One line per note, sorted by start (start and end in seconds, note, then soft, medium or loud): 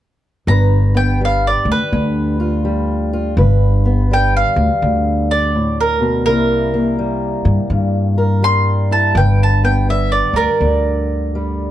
0.47 1.53 G1 loud
0.47 3.37 G2 medium
0.47 3.35 B4 medium
0.47 0.95 A#5 medium
0.94 3.34 B3 medium
0.94 1.20 G5 medium
1.21 2.64 G3 medium
1.21 1.46 F5 medium
1.47 1.69 D5 medium
1.65 1.77 D2 medium
1.72 3.11 B4 medium
1.92 3.38 D2 medium
1.92 3.35 D3 medium
2.40 3.12 F4 medium
2.65 4.11 G3 medium
3.13 3.35 F4 medium
3.37 4.42 G1 loud
3.37 5.54 G2 medium
3.37 5.28 B4 medium
3.85 6.24 B3 medium
4.11 6.26 G3 medium
4.11 4.35 G5 medium
4.37 5.29 F5 medium
4.56 4.68 D2 medium
4.82 6.26 D2 medium
4.82 6.24 D3 medium
5.31 5.77 D5 medium
5.55 6.00 A2 medium
5.81 6.25 A#4 medium
6.00 6.27 B2 medium
6.26 7.31 C2 loud
6.26 7.71 C3 medium
6.26 6.98 G3 medium
6.26 6.73 A#3 medium
6.26 8.90 E4 medium
6.26 7.67 A#4 medium
6.74 9.16 A#3 medium
6.99 8.42 G3 medium
7.45 7.57 G2 medium
7.70 9.16 G2 medium
7.70 9.15 G2 medium
8.18 9.13 A#4 medium
8.42 9.89 G3 medium
8.42 8.91 C6 loud
8.91 9.13 E4 medium
8.91 9.16 A5 medium
9.15 10.21 G1 loud
9.15 11.71 G2 medium
9.15 11.07 B4 medium
9.15 9.40 G5 medium
9.43 9.64 A5 medium
9.63 11.71 B3 medium
9.63 9.88 G5 medium
9.89 11.35 G3 medium
9.89 10.13 E5 medium
10.12 10.36 D5 medium
10.33 10.46 D2 medium
10.33 11.71 A#4 medium
10.33 11.71 D5 medium
10.60 11.71 D2 medium
10.60 11.71 D3 medium
11.35 11.71 G3 medium